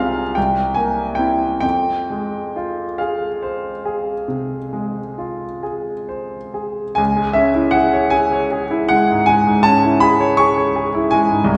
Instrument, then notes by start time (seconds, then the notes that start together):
grand piano
Already playing: C2 G#3 F5 G#5
0.00 C4 F4
0.35 C2 G5
0.74 A#3 G#5
1.15 C4 E4 G5
1.60 F2 G5
2.10 G#3
2.56 F4
2.98 G#4 F5
3.42 C5
3.85 G#4
4.28 C3
4.73 G#3
5.18 F4
5.63 G#4
6.09 C5
6.54 G#4
6.95 C#2 G#5
7.16 G#3
7.33 C#4 E5
7.54 E4
7.71 G#4 F#5
7.93 C#5
8.10 G#4 G#5
8.32 C#5
8.52 G#4
8.71 E4
8.89 G#3 F#5
9.11 G#2
9.26 G#3 G#5
9.47 G#2
9.63 C#4 A5
9.83 E4
10.00 G#4 B5
10.20 C#5
10.37 G#4 C#6
10.57 C#5
10.76 G#4
10.94 E4
11.11 G#3 G#5
11.31 G#2
11.44 C2